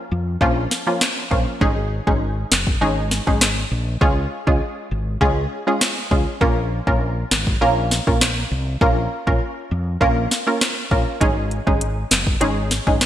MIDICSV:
0, 0, Header, 1, 4, 480
1, 0, Start_track
1, 0, Key_signature, -5, "minor"
1, 0, Tempo, 600000
1, 1290, Time_signature, 4, 2, 24, 8
1, 10447, End_track
2, 0, Start_track
2, 0, Title_t, "Synth pluck"
2, 0, Program_c, 0, 84
2, 328, Note_on_c, 0, 53, 96
2, 329, Note_on_c, 0, 58, 89
2, 331, Note_on_c, 0, 61, 90
2, 332, Note_on_c, 0, 65, 107
2, 503, Note_off_c, 0, 53, 0
2, 503, Note_off_c, 0, 58, 0
2, 504, Note_off_c, 0, 61, 0
2, 505, Note_off_c, 0, 65, 0
2, 694, Note_on_c, 0, 53, 73
2, 695, Note_on_c, 0, 58, 66
2, 696, Note_on_c, 0, 61, 69
2, 699, Note_on_c, 0, 65, 84
2, 1021, Note_off_c, 0, 53, 0
2, 1021, Note_off_c, 0, 58, 0
2, 1022, Note_off_c, 0, 61, 0
2, 1024, Note_off_c, 0, 65, 0
2, 1046, Note_on_c, 0, 53, 76
2, 1049, Note_on_c, 0, 58, 66
2, 1049, Note_on_c, 0, 61, 70
2, 1052, Note_on_c, 0, 65, 81
2, 1270, Note_off_c, 0, 53, 0
2, 1271, Note_off_c, 0, 58, 0
2, 1271, Note_off_c, 0, 61, 0
2, 1272, Note_off_c, 0, 65, 0
2, 1288, Note_on_c, 0, 56, 94
2, 1290, Note_on_c, 0, 61, 86
2, 1290, Note_on_c, 0, 63, 87
2, 1292, Note_on_c, 0, 68, 107
2, 1463, Note_off_c, 0, 56, 0
2, 1463, Note_off_c, 0, 61, 0
2, 1464, Note_off_c, 0, 63, 0
2, 1464, Note_off_c, 0, 68, 0
2, 1656, Note_on_c, 0, 56, 75
2, 1656, Note_on_c, 0, 61, 72
2, 1659, Note_on_c, 0, 63, 68
2, 1659, Note_on_c, 0, 68, 87
2, 1822, Note_off_c, 0, 56, 0
2, 1822, Note_off_c, 0, 61, 0
2, 1823, Note_off_c, 0, 63, 0
2, 1823, Note_off_c, 0, 68, 0
2, 2248, Note_on_c, 0, 56, 98
2, 2251, Note_on_c, 0, 61, 88
2, 2252, Note_on_c, 0, 63, 85
2, 2254, Note_on_c, 0, 68, 100
2, 2423, Note_off_c, 0, 56, 0
2, 2424, Note_off_c, 0, 61, 0
2, 2424, Note_off_c, 0, 63, 0
2, 2426, Note_off_c, 0, 68, 0
2, 2614, Note_on_c, 0, 56, 76
2, 2618, Note_on_c, 0, 61, 69
2, 2619, Note_on_c, 0, 63, 68
2, 2620, Note_on_c, 0, 68, 80
2, 2781, Note_off_c, 0, 56, 0
2, 2782, Note_off_c, 0, 61, 0
2, 2783, Note_off_c, 0, 63, 0
2, 2784, Note_off_c, 0, 68, 0
2, 3208, Note_on_c, 0, 56, 90
2, 3209, Note_on_c, 0, 61, 86
2, 3212, Note_on_c, 0, 65, 90
2, 3213, Note_on_c, 0, 68, 103
2, 3382, Note_off_c, 0, 56, 0
2, 3383, Note_off_c, 0, 61, 0
2, 3384, Note_off_c, 0, 65, 0
2, 3385, Note_off_c, 0, 68, 0
2, 3575, Note_on_c, 0, 56, 77
2, 3577, Note_on_c, 0, 61, 72
2, 3579, Note_on_c, 0, 65, 71
2, 3580, Note_on_c, 0, 68, 85
2, 3741, Note_off_c, 0, 56, 0
2, 3742, Note_off_c, 0, 61, 0
2, 3743, Note_off_c, 0, 65, 0
2, 3744, Note_off_c, 0, 68, 0
2, 4166, Note_on_c, 0, 56, 96
2, 4167, Note_on_c, 0, 61, 87
2, 4170, Note_on_c, 0, 65, 88
2, 4170, Note_on_c, 0, 68, 106
2, 4342, Note_off_c, 0, 56, 0
2, 4342, Note_off_c, 0, 61, 0
2, 4343, Note_off_c, 0, 65, 0
2, 4344, Note_off_c, 0, 68, 0
2, 4535, Note_on_c, 0, 56, 79
2, 4536, Note_on_c, 0, 61, 68
2, 4538, Note_on_c, 0, 65, 71
2, 4541, Note_on_c, 0, 68, 87
2, 4862, Note_off_c, 0, 56, 0
2, 4862, Note_off_c, 0, 61, 0
2, 4863, Note_off_c, 0, 65, 0
2, 4864, Note_off_c, 0, 68, 0
2, 4888, Note_on_c, 0, 56, 75
2, 4890, Note_on_c, 0, 61, 67
2, 4890, Note_on_c, 0, 65, 70
2, 4892, Note_on_c, 0, 68, 80
2, 5111, Note_off_c, 0, 56, 0
2, 5111, Note_off_c, 0, 61, 0
2, 5111, Note_off_c, 0, 65, 0
2, 5113, Note_off_c, 0, 68, 0
2, 5127, Note_on_c, 0, 58, 94
2, 5128, Note_on_c, 0, 61, 84
2, 5130, Note_on_c, 0, 65, 87
2, 5132, Note_on_c, 0, 70, 101
2, 5302, Note_off_c, 0, 58, 0
2, 5303, Note_off_c, 0, 61, 0
2, 5304, Note_off_c, 0, 65, 0
2, 5304, Note_off_c, 0, 70, 0
2, 5495, Note_on_c, 0, 58, 76
2, 5497, Note_on_c, 0, 61, 71
2, 5499, Note_on_c, 0, 65, 72
2, 5501, Note_on_c, 0, 70, 85
2, 5661, Note_off_c, 0, 58, 0
2, 5662, Note_off_c, 0, 61, 0
2, 5663, Note_off_c, 0, 65, 0
2, 5664, Note_off_c, 0, 70, 0
2, 6089, Note_on_c, 0, 58, 98
2, 6091, Note_on_c, 0, 61, 88
2, 6093, Note_on_c, 0, 65, 91
2, 6093, Note_on_c, 0, 70, 108
2, 6263, Note_off_c, 0, 58, 0
2, 6264, Note_off_c, 0, 61, 0
2, 6265, Note_off_c, 0, 65, 0
2, 6265, Note_off_c, 0, 70, 0
2, 6456, Note_on_c, 0, 58, 74
2, 6457, Note_on_c, 0, 61, 71
2, 6458, Note_on_c, 0, 65, 69
2, 6460, Note_on_c, 0, 70, 81
2, 6622, Note_off_c, 0, 58, 0
2, 6622, Note_off_c, 0, 61, 0
2, 6623, Note_off_c, 0, 65, 0
2, 6624, Note_off_c, 0, 70, 0
2, 7049, Note_on_c, 0, 58, 95
2, 7051, Note_on_c, 0, 61, 85
2, 7052, Note_on_c, 0, 65, 87
2, 7053, Note_on_c, 0, 70, 104
2, 7223, Note_off_c, 0, 58, 0
2, 7224, Note_off_c, 0, 61, 0
2, 7225, Note_off_c, 0, 65, 0
2, 7225, Note_off_c, 0, 70, 0
2, 7414, Note_on_c, 0, 58, 77
2, 7416, Note_on_c, 0, 61, 71
2, 7418, Note_on_c, 0, 65, 67
2, 7419, Note_on_c, 0, 70, 86
2, 7581, Note_off_c, 0, 58, 0
2, 7582, Note_off_c, 0, 61, 0
2, 7583, Note_off_c, 0, 65, 0
2, 7583, Note_off_c, 0, 70, 0
2, 8005, Note_on_c, 0, 58, 99
2, 8009, Note_on_c, 0, 61, 90
2, 8009, Note_on_c, 0, 65, 87
2, 8012, Note_on_c, 0, 70, 105
2, 8181, Note_off_c, 0, 58, 0
2, 8183, Note_off_c, 0, 61, 0
2, 8183, Note_off_c, 0, 65, 0
2, 8185, Note_off_c, 0, 70, 0
2, 8374, Note_on_c, 0, 58, 73
2, 8376, Note_on_c, 0, 61, 69
2, 8377, Note_on_c, 0, 65, 69
2, 8378, Note_on_c, 0, 70, 87
2, 8701, Note_off_c, 0, 58, 0
2, 8702, Note_off_c, 0, 61, 0
2, 8702, Note_off_c, 0, 65, 0
2, 8703, Note_off_c, 0, 70, 0
2, 8728, Note_on_c, 0, 58, 75
2, 8729, Note_on_c, 0, 61, 67
2, 8731, Note_on_c, 0, 65, 69
2, 8733, Note_on_c, 0, 70, 82
2, 8951, Note_off_c, 0, 58, 0
2, 8951, Note_off_c, 0, 61, 0
2, 8952, Note_off_c, 0, 65, 0
2, 8953, Note_off_c, 0, 70, 0
2, 8965, Note_on_c, 0, 56, 92
2, 8967, Note_on_c, 0, 61, 88
2, 8969, Note_on_c, 0, 63, 90
2, 8971, Note_on_c, 0, 68, 103
2, 9141, Note_off_c, 0, 56, 0
2, 9142, Note_off_c, 0, 61, 0
2, 9143, Note_off_c, 0, 63, 0
2, 9144, Note_off_c, 0, 68, 0
2, 9334, Note_on_c, 0, 56, 75
2, 9335, Note_on_c, 0, 61, 72
2, 9337, Note_on_c, 0, 63, 69
2, 9339, Note_on_c, 0, 68, 83
2, 9501, Note_off_c, 0, 56, 0
2, 9501, Note_off_c, 0, 61, 0
2, 9502, Note_off_c, 0, 63, 0
2, 9503, Note_off_c, 0, 68, 0
2, 9925, Note_on_c, 0, 56, 97
2, 9927, Note_on_c, 0, 61, 89
2, 9928, Note_on_c, 0, 63, 88
2, 9932, Note_on_c, 0, 68, 102
2, 10101, Note_off_c, 0, 56, 0
2, 10102, Note_off_c, 0, 61, 0
2, 10103, Note_off_c, 0, 63, 0
2, 10104, Note_off_c, 0, 68, 0
2, 10294, Note_on_c, 0, 56, 80
2, 10296, Note_on_c, 0, 61, 66
2, 10299, Note_on_c, 0, 63, 68
2, 10300, Note_on_c, 0, 68, 81
2, 10447, Note_off_c, 0, 56, 0
2, 10447, Note_off_c, 0, 61, 0
2, 10447, Note_off_c, 0, 63, 0
2, 10447, Note_off_c, 0, 68, 0
2, 10447, End_track
3, 0, Start_track
3, 0, Title_t, "Fretless electric bass"
3, 0, Program_c, 1, 35
3, 91, Note_on_c, 1, 41, 90
3, 285, Note_off_c, 1, 41, 0
3, 327, Note_on_c, 1, 34, 106
3, 522, Note_off_c, 1, 34, 0
3, 1051, Note_on_c, 1, 34, 83
3, 1153, Note_off_c, 1, 34, 0
3, 1290, Note_on_c, 1, 32, 102
3, 1587, Note_off_c, 1, 32, 0
3, 1657, Note_on_c, 1, 32, 92
3, 1942, Note_off_c, 1, 32, 0
3, 2011, Note_on_c, 1, 30, 91
3, 2205, Note_off_c, 1, 30, 0
3, 2249, Note_on_c, 1, 32, 100
3, 2547, Note_off_c, 1, 32, 0
3, 2618, Note_on_c, 1, 32, 88
3, 2903, Note_off_c, 1, 32, 0
3, 2970, Note_on_c, 1, 34, 87
3, 3164, Note_off_c, 1, 34, 0
3, 3210, Note_on_c, 1, 37, 109
3, 3404, Note_off_c, 1, 37, 0
3, 3577, Note_on_c, 1, 37, 84
3, 3668, Note_off_c, 1, 37, 0
3, 3930, Note_on_c, 1, 32, 83
3, 4124, Note_off_c, 1, 32, 0
3, 4167, Note_on_c, 1, 37, 99
3, 4363, Note_off_c, 1, 37, 0
3, 4891, Note_on_c, 1, 37, 90
3, 4993, Note_off_c, 1, 37, 0
3, 5130, Note_on_c, 1, 34, 107
3, 5427, Note_off_c, 1, 34, 0
3, 5497, Note_on_c, 1, 34, 89
3, 5782, Note_off_c, 1, 34, 0
3, 5849, Note_on_c, 1, 32, 91
3, 6043, Note_off_c, 1, 32, 0
3, 6089, Note_on_c, 1, 34, 97
3, 6386, Note_off_c, 1, 34, 0
3, 6458, Note_on_c, 1, 34, 83
3, 6743, Note_off_c, 1, 34, 0
3, 6810, Note_on_c, 1, 36, 92
3, 7004, Note_off_c, 1, 36, 0
3, 7050, Note_on_c, 1, 34, 105
3, 7244, Note_off_c, 1, 34, 0
3, 7417, Note_on_c, 1, 34, 79
3, 7508, Note_off_c, 1, 34, 0
3, 7770, Note_on_c, 1, 41, 92
3, 7964, Note_off_c, 1, 41, 0
3, 8008, Note_on_c, 1, 34, 105
3, 8203, Note_off_c, 1, 34, 0
3, 8729, Note_on_c, 1, 34, 83
3, 8832, Note_off_c, 1, 34, 0
3, 8968, Note_on_c, 1, 32, 108
3, 9266, Note_off_c, 1, 32, 0
3, 9336, Note_on_c, 1, 32, 95
3, 9622, Note_off_c, 1, 32, 0
3, 9688, Note_on_c, 1, 30, 87
3, 9883, Note_off_c, 1, 30, 0
3, 9928, Note_on_c, 1, 32, 99
3, 10226, Note_off_c, 1, 32, 0
3, 10295, Note_on_c, 1, 32, 90
3, 10447, Note_off_c, 1, 32, 0
3, 10447, End_track
4, 0, Start_track
4, 0, Title_t, "Drums"
4, 327, Note_on_c, 9, 36, 81
4, 407, Note_off_c, 9, 36, 0
4, 571, Note_on_c, 9, 38, 65
4, 651, Note_off_c, 9, 38, 0
4, 810, Note_on_c, 9, 37, 94
4, 810, Note_on_c, 9, 38, 109
4, 818, Note_on_c, 9, 39, 90
4, 890, Note_off_c, 9, 37, 0
4, 890, Note_off_c, 9, 38, 0
4, 898, Note_off_c, 9, 39, 0
4, 1051, Note_on_c, 9, 36, 101
4, 1131, Note_off_c, 9, 36, 0
4, 1290, Note_on_c, 9, 36, 122
4, 1370, Note_off_c, 9, 36, 0
4, 1658, Note_on_c, 9, 36, 94
4, 1738, Note_off_c, 9, 36, 0
4, 2013, Note_on_c, 9, 38, 103
4, 2021, Note_on_c, 9, 39, 87
4, 2093, Note_off_c, 9, 38, 0
4, 2101, Note_off_c, 9, 39, 0
4, 2135, Note_on_c, 9, 36, 91
4, 2215, Note_off_c, 9, 36, 0
4, 2490, Note_on_c, 9, 38, 67
4, 2570, Note_off_c, 9, 38, 0
4, 2618, Note_on_c, 9, 36, 96
4, 2698, Note_off_c, 9, 36, 0
4, 2730, Note_on_c, 9, 37, 86
4, 2730, Note_on_c, 9, 38, 110
4, 2738, Note_on_c, 9, 39, 88
4, 2810, Note_off_c, 9, 37, 0
4, 2810, Note_off_c, 9, 38, 0
4, 2818, Note_off_c, 9, 39, 0
4, 3210, Note_on_c, 9, 36, 120
4, 3290, Note_off_c, 9, 36, 0
4, 3577, Note_on_c, 9, 36, 91
4, 3657, Note_off_c, 9, 36, 0
4, 4167, Note_on_c, 9, 36, 75
4, 4247, Note_off_c, 9, 36, 0
4, 4650, Note_on_c, 9, 37, 92
4, 4650, Note_on_c, 9, 38, 105
4, 4658, Note_on_c, 9, 39, 84
4, 4730, Note_off_c, 9, 37, 0
4, 4730, Note_off_c, 9, 38, 0
4, 4738, Note_off_c, 9, 39, 0
4, 4890, Note_on_c, 9, 36, 100
4, 4970, Note_off_c, 9, 36, 0
4, 5129, Note_on_c, 9, 36, 122
4, 5209, Note_off_c, 9, 36, 0
4, 5497, Note_on_c, 9, 36, 90
4, 5577, Note_off_c, 9, 36, 0
4, 5851, Note_on_c, 9, 38, 105
4, 5859, Note_on_c, 9, 39, 86
4, 5931, Note_off_c, 9, 38, 0
4, 5939, Note_off_c, 9, 39, 0
4, 5975, Note_on_c, 9, 36, 90
4, 6055, Note_off_c, 9, 36, 0
4, 6331, Note_on_c, 9, 38, 68
4, 6411, Note_off_c, 9, 38, 0
4, 6458, Note_on_c, 9, 36, 97
4, 6538, Note_off_c, 9, 36, 0
4, 6571, Note_on_c, 9, 37, 92
4, 6571, Note_on_c, 9, 38, 113
4, 6579, Note_on_c, 9, 39, 84
4, 6651, Note_off_c, 9, 37, 0
4, 6651, Note_off_c, 9, 38, 0
4, 6659, Note_off_c, 9, 39, 0
4, 7049, Note_on_c, 9, 36, 127
4, 7129, Note_off_c, 9, 36, 0
4, 7417, Note_on_c, 9, 36, 93
4, 7497, Note_off_c, 9, 36, 0
4, 8007, Note_on_c, 9, 36, 79
4, 8087, Note_off_c, 9, 36, 0
4, 8251, Note_on_c, 9, 38, 64
4, 8331, Note_off_c, 9, 38, 0
4, 8491, Note_on_c, 9, 37, 95
4, 8491, Note_on_c, 9, 38, 112
4, 8499, Note_on_c, 9, 39, 88
4, 8571, Note_off_c, 9, 37, 0
4, 8571, Note_off_c, 9, 38, 0
4, 8579, Note_off_c, 9, 39, 0
4, 8730, Note_on_c, 9, 36, 102
4, 8810, Note_off_c, 9, 36, 0
4, 8969, Note_on_c, 9, 36, 122
4, 8970, Note_on_c, 9, 42, 79
4, 9049, Note_off_c, 9, 36, 0
4, 9050, Note_off_c, 9, 42, 0
4, 9211, Note_on_c, 9, 42, 48
4, 9291, Note_off_c, 9, 42, 0
4, 9337, Note_on_c, 9, 36, 94
4, 9417, Note_off_c, 9, 36, 0
4, 9450, Note_on_c, 9, 42, 81
4, 9530, Note_off_c, 9, 42, 0
4, 9688, Note_on_c, 9, 42, 58
4, 9690, Note_on_c, 9, 38, 109
4, 9698, Note_on_c, 9, 39, 88
4, 9768, Note_off_c, 9, 42, 0
4, 9770, Note_off_c, 9, 38, 0
4, 9778, Note_off_c, 9, 39, 0
4, 9813, Note_on_c, 9, 36, 87
4, 9893, Note_off_c, 9, 36, 0
4, 9928, Note_on_c, 9, 42, 81
4, 10008, Note_off_c, 9, 42, 0
4, 10168, Note_on_c, 9, 38, 65
4, 10168, Note_on_c, 9, 42, 56
4, 10248, Note_off_c, 9, 38, 0
4, 10248, Note_off_c, 9, 42, 0
4, 10296, Note_on_c, 9, 36, 100
4, 10376, Note_off_c, 9, 36, 0
4, 10409, Note_on_c, 9, 37, 90
4, 10409, Note_on_c, 9, 38, 109
4, 10409, Note_on_c, 9, 42, 80
4, 10417, Note_on_c, 9, 39, 92
4, 10447, Note_off_c, 9, 37, 0
4, 10447, Note_off_c, 9, 38, 0
4, 10447, Note_off_c, 9, 39, 0
4, 10447, Note_off_c, 9, 42, 0
4, 10447, End_track
0, 0, End_of_file